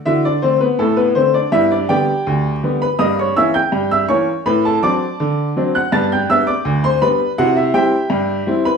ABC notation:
X:1
M:2/4
L:1/16
Q:1/4=82
K:G
V:1 name="Upright piano"
[Ee] [Dd] [Cc] [B,B] [A,A] [B,B] [Cc] [Dd] | [Ee] [Dd] [Gdg]4- [Gdg] [Bb] | [_e_e'] [_d_d'] [=e=e'] [gg']2 [ee'] [dd']2 | [Bb] [Aa] [dad']4- [dad'] [ff'] |
[aa'] [gg'] [ee'] [dd']2 [cc'] [Bb]2 | [Ff] [Ee] [Geg]4- [Geg] [Bb] |]
V:2 name="Upright piano" clef=bass
[D,F]2 [D,A,]2 A,,2 [D,A,]2 | [G,,B,]2 [D,G,B,]2 D,,2 [D,G,B,]2 | [G,,_B,]2 [E,B,_D]2 G,,2 [E,B,D]2 | A,,2 [F,CD]2 D,2 [F,CD]2 |
[G,,B,]2 [G,B,D]2 D,,2 [G,B,D]2 | [C,E]2 [G,CE]2 G,,2 [G,CE]2 |]